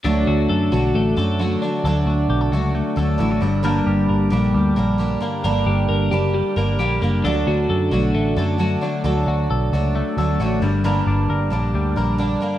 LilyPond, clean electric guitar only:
\new Staff \with { instrumentName = "Clean electric guitar" } { \time 4/4 \key d \major \tempo 4 = 133 <d a'>8 fis'8 a'8 fis'8 a8 a'8 fis'8 d'8 | a'8 fis'8 g'16 a'16 fis'8 a8 a'8 e'16 fis'16 g,8 | <g, bes'>8 g'8 bes'8 g'8 g8 bes'8 g'8 bes8 | bes'8 g'8 bes'8 g'8 g8 bes'8 g'8 bes8 |
<d a'>8 fis'8 a'8 fis'8 a8 a'8 fis'8 d'8 | a'8 fis'8 a'8 fis'8 a8 a'8 fis'8 g,8 | <g, bes'>8 d'8 bes'8 d'8 g8 bes'8 d'8 bes8 | }